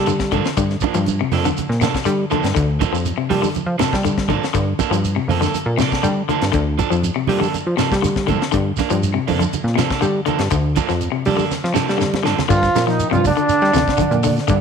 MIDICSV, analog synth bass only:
0, 0, Header, 1, 2, 480
1, 0, Start_track
1, 0, Key_signature, -2, "minor"
1, 0, Tempo, 497100
1, 555, Time_signature, 4, 2, 24, 8
1, 14106, End_track
2, 0, Start_track
2, 0, Title_t, "Analog synth bass"
2, 0, Program_c, 0, 38
2, 0, Note_on_c, 0, 55, 78
2, 313, Note_on_c, 0, 43, 93
2, 327, Note_off_c, 0, 55, 0
2, 408, Note_off_c, 0, 43, 0
2, 553, Note_on_c, 0, 43, 93
2, 738, Note_off_c, 0, 43, 0
2, 919, Note_on_c, 0, 43, 91
2, 1193, Note_off_c, 0, 43, 0
2, 1283, Note_on_c, 0, 41, 90
2, 1464, Note_off_c, 0, 41, 0
2, 1636, Note_on_c, 0, 46, 93
2, 1821, Note_off_c, 0, 46, 0
2, 1989, Note_on_c, 0, 55, 97
2, 2175, Note_off_c, 0, 55, 0
2, 2354, Note_on_c, 0, 43, 79
2, 2445, Note_off_c, 0, 43, 0
2, 2478, Note_on_c, 0, 38, 114
2, 2755, Note_off_c, 0, 38, 0
2, 2827, Note_on_c, 0, 41, 91
2, 3015, Note_off_c, 0, 41, 0
2, 3187, Note_on_c, 0, 55, 90
2, 3374, Note_off_c, 0, 55, 0
2, 3538, Note_on_c, 0, 53, 86
2, 3635, Note_off_c, 0, 53, 0
2, 3662, Note_on_c, 0, 43, 36
2, 3726, Note_off_c, 0, 43, 0
2, 3798, Note_on_c, 0, 55, 81
2, 4153, Note_on_c, 0, 43, 88
2, 4168, Note_off_c, 0, 55, 0
2, 4247, Note_off_c, 0, 43, 0
2, 4392, Note_on_c, 0, 43, 101
2, 4577, Note_off_c, 0, 43, 0
2, 4737, Note_on_c, 0, 43, 91
2, 5018, Note_off_c, 0, 43, 0
2, 5098, Note_on_c, 0, 41, 82
2, 5288, Note_off_c, 0, 41, 0
2, 5465, Note_on_c, 0, 46, 99
2, 5653, Note_off_c, 0, 46, 0
2, 5826, Note_on_c, 0, 55, 97
2, 6013, Note_off_c, 0, 55, 0
2, 6203, Note_on_c, 0, 43, 82
2, 6290, Note_off_c, 0, 43, 0
2, 6319, Note_on_c, 0, 38, 114
2, 6595, Note_off_c, 0, 38, 0
2, 6679, Note_on_c, 0, 41, 91
2, 6862, Note_off_c, 0, 41, 0
2, 7037, Note_on_c, 0, 55, 85
2, 7219, Note_off_c, 0, 55, 0
2, 7402, Note_on_c, 0, 53, 79
2, 7489, Note_off_c, 0, 53, 0
2, 7527, Note_on_c, 0, 43, 36
2, 7584, Note_off_c, 0, 43, 0
2, 7650, Note_on_c, 0, 55, 81
2, 8006, Note_on_c, 0, 43, 90
2, 8021, Note_off_c, 0, 55, 0
2, 8095, Note_off_c, 0, 43, 0
2, 8244, Note_on_c, 0, 43, 100
2, 8423, Note_off_c, 0, 43, 0
2, 8603, Note_on_c, 0, 43, 94
2, 8874, Note_off_c, 0, 43, 0
2, 8962, Note_on_c, 0, 41, 82
2, 9142, Note_off_c, 0, 41, 0
2, 9308, Note_on_c, 0, 46, 94
2, 9495, Note_off_c, 0, 46, 0
2, 9675, Note_on_c, 0, 55, 92
2, 9858, Note_off_c, 0, 55, 0
2, 10035, Note_on_c, 0, 43, 86
2, 10125, Note_off_c, 0, 43, 0
2, 10153, Note_on_c, 0, 38, 111
2, 10431, Note_off_c, 0, 38, 0
2, 10525, Note_on_c, 0, 41, 91
2, 10705, Note_off_c, 0, 41, 0
2, 10871, Note_on_c, 0, 55, 87
2, 11056, Note_off_c, 0, 55, 0
2, 11239, Note_on_c, 0, 53, 85
2, 11328, Note_off_c, 0, 53, 0
2, 11356, Note_on_c, 0, 43, 37
2, 11417, Note_off_c, 0, 43, 0
2, 11483, Note_on_c, 0, 55, 76
2, 11827, Note_on_c, 0, 43, 87
2, 11841, Note_off_c, 0, 55, 0
2, 11923, Note_off_c, 0, 43, 0
2, 12073, Note_on_c, 0, 43, 101
2, 12258, Note_off_c, 0, 43, 0
2, 12315, Note_on_c, 0, 46, 88
2, 12593, Note_off_c, 0, 46, 0
2, 12672, Note_on_c, 0, 43, 90
2, 12858, Note_off_c, 0, 43, 0
2, 13152, Note_on_c, 0, 55, 90
2, 13243, Note_off_c, 0, 55, 0
2, 13265, Note_on_c, 0, 38, 95
2, 13362, Note_off_c, 0, 38, 0
2, 13517, Note_on_c, 0, 43, 40
2, 13577, Note_off_c, 0, 43, 0
2, 13625, Note_on_c, 0, 46, 94
2, 13904, Note_off_c, 0, 46, 0
2, 13999, Note_on_c, 0, 43, 105
2, 14091, Note_off_c, 0, 43, 0
2, 14106, End_track
0, 0, End_of_file